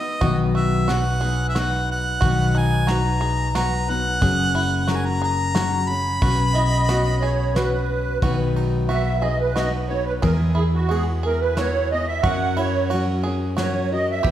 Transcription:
Already playing: steel-string acoustic guitar B3 D#4 B4, five-string banjo F#4, harmonica D#5
0.21 fingered electric bass B1, steel-string acoustic guitar B2 D#3 F#3 B3 B4, five-string banjo F#4, kick, closed hi-hat
0.55 five-string banjo F#4, harmonica E5
0.88 steel-string acoustic guitar F#3 B3 D#4 B4, five-string banjo F#4, harmonica F#5, snare, closed hi-hat
1.21 steel-string acoustic guitar B3 D#4 B4, five-string banjo G#4
1.25 steel-string acoustic guitar F#3
1.49 harmonica E5
1.55 steel-string acoustic guitar F#3 B3 D#4 B4, five-string banjo F#4, harmonica F#5, snare, closed hi-hat
1.92 harmonica F#5
2.21 fingered electric bass B1, steel-string acoustic guitar B2 D#3 F#3 B3 D#4 B4, five-string banjo F#4, kick, closed hi-hat
2.55 five-string banjo D#4, harmonica G#5
2.87 steel-string acoustic guitar F#3 B3 D#4 B4, five-string banjo F#4, harmonica A#5, snare, closed hi-hat
3.21 five-string banjo G#4
3.54 steel-string acoustic guitar F#3 B3 D#4 B4, five-string banjo F#4, harmonica A#5, snare, closed hi-hat
3.88 steel-string acoustic guitar F#3 B3 D#4 B4, harmonica F#5
4.20 fingered electric bass F#1, steel-string acoustic guitar F#3 C#4 G#4 A#4, five-string banjo G#4, kick, closed hi-hat
4.55 five-string banjo E4
4.88 steel-string acoustic guitar F#3 C#4 G#4 A#4, five-string banjo F#4, harmonica A#5, snare, closed hi-hat
4.96 harmonica G#5
5.05 harmonica A#5
5.22 five-string banjo G#4, harmonica A#5
5.55 steel-string acoustic guitar F#3 C#4 G#4 A#4, five-string banjo F#4, snare, closed hi-hat
5.89 steel-string acoustic guitar C#4 G#4, harmonica B5
6.22 fingered electric bass B1, steel-string acoustic guitar B3 C#4 F#4 B4, five-string banjo F#4, kick, closed hi-hat
6.53 five-string banjo E4, accordion D#5
6.89 steel-string acoustic guitar B3 C#4 F#4 B4, five-string banjo F#4, snare, closed hi-hat
7.21 five-string banjo G#4, accordion C#5
7.55 steel-string acoustic guitar B3 C#4 F#4 B4, five-string banjo F#4, accordion B4, snare, closed hi-hat
8.22 fingered electric bass B1, steel-string acoustic guitar B2 D#3 F#3 B3 D#4 B4, five-string banjo F#4, kick, ride
8.56 five-string banjo D#4, ride
8.89 steel-string acoustic guitar F#3 B3 D#4 B4, five-string banjo F#4, accordion E5, ride
9.19 five-string banjo G#4, accordion D#5 E5
9.23 steel-string acoustic guitar F#3 B3 D#4 B4
9.41 accordion B4
9.56 steel-string acoustic guitar F#3 B3 D#4 B4, five-string banjo F#4, accordion D#5, snare, ride
9.89 steel-string acoustic guitar F#3 B3 D#4 B4, accordion C#5
10.05 accordion B4
10.22 fingered electric bass E2, steel-string acoustic guitar E3 G#3 B3 E4 G#4, five-string banjo G#4, accordion A#4, kick, ride
10.55 five-string banjo E4, accordion G#4
10.74 accordion F#4
10.89 steel-string acoustic guitar G#3 B3 E4 G#4, five-string banjo F#4, accordion G#4, ride
11.23 steel-string acoustic guitar E4 G#4, five-string banjo G#4, accordion A#4
11.28 steel-string acoustic guitar B3
11.41 accordion B4
11.57 steel-string acoustic guitar G#3 B3 E4 G#4, five-string banjo F#4, accordion C#5, snare, ride
11.92 steel-string acoustic guitar B3 E4 G#4, accordion D#5
12.08 accordion E5
12.22 fingered electric bass F#2, steel-string acoustic guitar F#3 C#4 F#4 A#4, five-string banjo F#4, accordion F#5, kick, ride
12.57 five-string banjo E4, accordion C#5, ride
12.90 steel-string acoustic guitar F#3 C#4 F#4, five-string banjo F#4, ride
12.95 steel-string acoustic guitar A#4
13.23 steel-string acoustic guitar C#4 F#4 A#4, five-string banjo G#4
13.57 steel-string acoustic guitar F#3 C#4 F#4 A#4, five-string banjo F#4, accordion C#5, snare, ride
13.92 steel-string acoustic guitar C#4 F#4 A#4, accordion D#5
14.11 accordion E5
14.23 fingered electric bass E2, steel-string acoustic guitar E3 G3 B3 E4 B4, five-string banjo G4, kick, ride

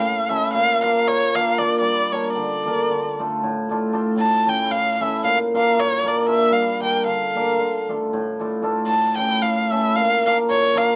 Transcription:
0.00 hammered dulcimer A2, erhu F5
0.29 hammered dulcimer A3 C#4 E4 A4, erhu E5
0.53 hammered dulcimer A#2, erhu F5
0.83 hammered dulcimer A#3 D4 F4 A#4, erhu F5
1.08 hammered dulcimer A#2, erhu C#5
1.34 hammered dulcimer A#3 D4 F4 A#4, erhu F5
1.58 hammered dulcimer A#3 D4 F4 A#4, erhu D5
1.80 hammered dulcimer G3, erhu D5
2.12 hammered dulcimer A#3 D4 G4 A#4, erhu C#5
2.33 hammered dulcimer D3, erhu D5
2.65 hammered dulcimer A#3 D4 G4 A#4
2.90 hammered dulcimer D3
3.19 hammered dulcimer A3 D4 F4 A4
3.43 hammered dulcimer A2
3.69 hammered dulcimer A3 D4 F4 A4
3.93 hammered dulcimer A3 D4 F4 A4
4.16 hammered dulcimer A2, erhu A5
4.47 hammered dulcimer A3 C#4 E4 A4, erhu G5
4.70 hammered dulcimer A2, erhu F5
5.00 hammered dulcimer A3 C#4 E4 A4, erhu E5
5.24 hammered dulcimer A#2, erhu F5
5.54 hammered dulcimer A#3 D4 F4 A#4, erhu F5
5.79 hammered dulcimer A#2, erhu C#5
6.04 hammered dulcimer A#3 D4 F4 A#4, erhu D5
6.27 hammered dulcimer A#3 D4 F4 A#4, erhu E5
6.51 hammered dulcimer G3, erhu F5
6.79 hammered dulcimer A#3 D4 G4 A#4, erhu G5
7.05 hammered dulcimer D3, erhu F5
7.36 hammered dulcimer A#3 D4 G4 A#4
7.59 hammered dulcimer D3
7.89 hammered dulcimer A3 D4 F4 A4
8.13 hammered dulcimer A2
8.39 hammered dulcimer A3 D4 F4 A4
8.62 hammered dulcimer A3 D4 F4 A4
8.87 hammered dulcimer A2, erhu A5
9.17 hammered dulcimer A3 C#4 E4 A4, erhu G5
9.41 hammered dulcimer A2, erhu F5
9.72 hammered dulcimer A3 C#4 E4 A4, erhu E5
9.96 hammered dulcimer A#2, erhu F5
10.26 hammered dulcimer A#3 D4 F4 A#4, erhu F5
10.50 hammered dulcimer A#2, erhu C#5
10.75 hammered dulcimer A#3 D4 F4 A#4, erhu F5

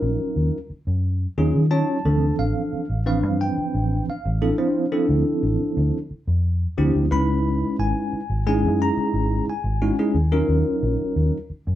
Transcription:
Already playing: tine electric piano F#3 C#4 D#4 F4 A#4
0.02 fingered electric bass A#1
0.19 muted fingered electric bass stroke
0.36 fingered electric bass D#2
0.70 muted fingered electric bass stroke
0.87 fingered electric bass F#2
1.38 fingered electric bass D#2, tine electric piano F#3 C#4 D#4 F4 G#4
1.55 fingered electric bass D#3
1.71 tine electric piano F#3 C#4 D#4 F4 C#5 A5
2.05 fingered electric bass D2, tine electric piano E3 F3 C4 D4 A4
2.39 fingered electric bass A1, tine electric piano F5
2.73 muted fingered electric bass stroke
2.89 fingered electric bass A1
3.06 tine electric piano E3 F3 C4 D4 B4 F5
3.23 fingered electric bass G2
3.41 tine electric piano G5
3.58 muted fingered electric bass stroke
3.74 fingered electric bass A1
4.08 tine electric piano F5, muted fingered electric bass stroke
4.25 fingered electric bass A1
4.42 tine electric piano F3 C4 D4 E4 A4
4.58 tine electric piano F3 C4 D4 E4 C5
4.92 tine electric piano F3 C4 D4 E4 A4
5.09 fingered electric bass D2
5.43 fingered electric bass A1
5.60 muted fingered electric bass stroke
5.77 fingered electric bass D2
6.11 muted fingered electric bass stroke
6.27 fingered electric bass F2
6.78 fingered electric bass D2, tine electric piano F3 C4 D4 E4 G4
6.95 fingered electric bass D2
7.11 fingered electric bass C#2, tine electric piano G#3 C#4 D#4 E4 B4 B5
7.79 fingered electric bass G#1, tine electric piano G#5
8.13 muted fingered electric bass stroke
8.30 fingered electric bass G#1
8.47 tine electric piano G#3 C#4 D#4 E4 G#4 G#5
8.63 fingered electric bass F#2
8.82 tine electric piano A#5
8.97 muted fingered electric bass stroke
9.13 fingered electric bass G#1
9.47 tine electric piano G#5, muted fingered electric bass stroke
9.64 fingered electric bass G#1
9.82 tine electric piano G#3 C#4 D#4 E4 F#4
9.99 tine electric piano G#3 C#4 D#4 E4 G#4
10.14 fingered electric bass D#2
10.32 tine electric piano F#3 C#4 D#4 F4 A#4
10.48 fingered electric bass D#2
10.83 fingered electric bass A#1
10.99 muted fingered electric bass stroke
11.16 fingered electric bass D#2
11.50 muted fingered electric bass stroke
11.67 fingered electric bass F#2

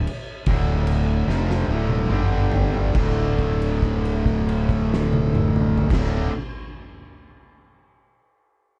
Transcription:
0.07 crash
0.46 fingered electric bass D1, distorted electric guitar D2 A2 D3, kick, crash
0.87 crash
1.27 fingered electric bass F1, distorted electric guitar F2 C3 F3, snare
1.50 snare
1.68 fingered electric bass D1, distorted electric guitar D2 A2 D3
1.89 high tom
2.09 fingered electric bass G1, distorted electric guitar G2 D3 G3, mid tom
2.51 floor tom
2.74 floor tom
2.93 fingered electric bass D1, distorted electric guitar D2 A2 D3, kick, crash
3.38 kick, crash
3.62 crash
3.82 kick, crash
4.05 crash
4.26 kick, crash
4.49 crash
4.69 kick, crash
4.94 snare
5.13 high tom
5.35 mid tom
5.56 mid tom
5.78 floor tom
5.89 fingered electric bass D1, distorted electric guitar D2 A2, kick, crash
5.93 distorted electric guitar D3, snare

